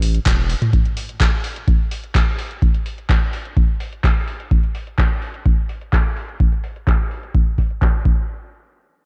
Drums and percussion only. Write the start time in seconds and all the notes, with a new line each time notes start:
0.02 open hi-hat
0.14 closed hi-hat
0.26 kick, clap, closed hi-hat
0.50 open hi-hat
0.62 closed hi-hat, mid tom
0.73 kick, closed hi-hat
0.85 closed hi-hat
0.97 open hi-hat
1.09 closed hi-hat
1.20 kick, clap, closed hi-hat
1.44 open hi-hat
1.56 closed hi-hat
1.68 kick, closed hi-hat
1.91 open hi-hat
2.04 closed hi-hat
2.15 kick, clap, closed hi-hat
2.39 open hi-hat
2.51 closed hi-hat
2.62 kick, closed hi-hat
2.74 closed hi-hat
2.86 open hi-hat
2.98 closed hi-hat
3.09 kick, clap, closed hi-hat
3.33 open hi-hat
3.45 closed hi-hat
3.57 kick, closed hi-hat
3.80 open hi-hat
3.93 closed hi-hat
4.04 kick, clap, closed hi-hat
4.28 open hi-hat
4.40 closed hi-hat
4.51 kick, closed hi-hat
4.63 closed hi-hat
4.75 open hi-hat
4.87 closed hi-hat
4.98 kick, clap, closed hi-hat
5.22 open hi-hat
5.34 closed hi-hat
5.46 kick, closed hi-hat
5.69 open hi-hat
5.81 closed hi-hat
5.93 kick, clap, closed hi-hat
6.16 open hi-hat
6.29 closed hi-hat
6.40 kick, closed hi-hat
6.52 closed hi-hat
6.64 open hi-hat
6.76 closed hi-hat
6.87 kick, clap, closed hi-hat
7.11 open hi-hat
7.23 closed hi-hat
7.35 kick, closed hi-hat
7.58 kick, open hi-hat
7.70 closed hi-hat
7.82 kick, clap, closed hi-hat
8.05 kick